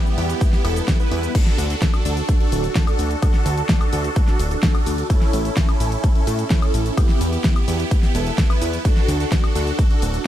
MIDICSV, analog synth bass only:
0, 0, Header, 1, 2, 480
1, 0, Start_track
1, 0, Key_signature, 2, "major"
1, 0, Tempo, 468750
1, 1381, Time_signature, 4, 2, 24, 8
1, 10516, End_track
2, 0, Start_track
2, 0, Title_t, "Analog synth bass"
2, 0, Program_c, 0, 38
2, 181, Note_on_c, 0, 40, 84
2, 355, Note_off_c, 0, 40, 0
2, 661, Note_on_c, 0, 28, 98
2, 835, Note_off_c, 0, 28, 0
2, 1141, Note_on_c, 0, 40, 104
2, 1315, Note_off_c, 0, 40, 0
2, 1621, Note_on_c, 0, 38, 100
2, 1795, Note_off_c, 0, 38, 0
2, 2102, Note_on_c, 0, 38, 82
2, 2275, Note_off_c, 0, 38, 0
2, 2582, Note_on_c, 0, 26, 96
2, 2755, Note_off_c, 0, 26, 0
2, 3062, Note_on_c, 0, 38, 79
2, 3235, Note_off_c, 0, 38, 0
2, 3541, Note_on_c, 0, 38, 104
2, 3715, Note_off_c, 0, 38, 0
2, 4024, Note_on_c, 0, 38, 82
2, 4196, Note_off_c, 0, 38, 0
2, 4502, Note_on_c, 0, 26, 97
2, 4675, Note_off_c, 0, 26, 0
2, 4981, Note_on_c, 0, 38, 81
2, 5155, Note_off_c, 0, 38, 0
2, 5462, Note_on_c, 0, 33, 102
2, 5635, Note_off_c, 0, 33, 0
2, 5942, Note_on_c, 0, 33, 81
2, 6115, Note_off_c, 0, 33, 0
2, 6423, Note_on_c, 0, 45, 97
2, 6596, Note_off_c, 0, 45, 0
2, 6903, Note_on_c, 0, 33, 82
2, 7076, Note_off_c, 0, 33, 0
2, 7382, Note_on_c, 0, 40, 98
2, 7555, Note_off_c, 0, 40, 0
2, 7863, Note_on_c, 0, 40, 82
2, 8036, Note_off_c, 0, 40, 0
2, 8342, Note_on_c, 0, 28, 93
2, 8515, Note_off_c, 0, 28, 0
2, 8822, Note_on_c, 0, 40, 80
2, 8995, Note_off_c, 0, 40, 0
2, 9302, Note_on_c, 0, 38, 102
2, 9475, Note_off_c, 0, 38, 0
2, 9783, Note_on_c, 0, 38, 83
2, 9956, Note_off_c, 0, 38, 0
2, 10262, Note_on_c, 0, 26, 100
2, 10435, Note_off_c, 0, 26, 0
2, 10516, End_track
0, 0, End_of_file